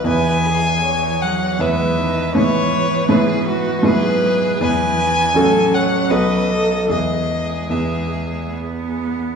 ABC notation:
X:1
M:3/4
L:1/16
Q:1/4=79
K:E
V:1 name="Violin"
g6 f2 e4 | c4 B4 B4 | g6 f2 d4 | d4 e4 z4 |]
V:2 name="Violin"
B2 G2 c4 B4 | B4 G2 F2 G2 G2 | B4 A2 c2 B2 A2 | G8- G3 z |]
V:3 name="Grand piano"
[E,,B,EB]8 [E,,B,EB]4 | [G,,B,EB]4 [G,,B,EB]4 [G,,B,EB]4 | [E,,B,EB]4 [A,,,CFA]4 [B,,,B,FA]4 | [E,,B,EG]4 [E,,B,EG]8 |]
V:4 name="Cello" clef=bass
E,4 E,2 F,2 G,2 D,2 | E,8 F,4 | E,2 E,2 F,8 | G,8 B,4 |]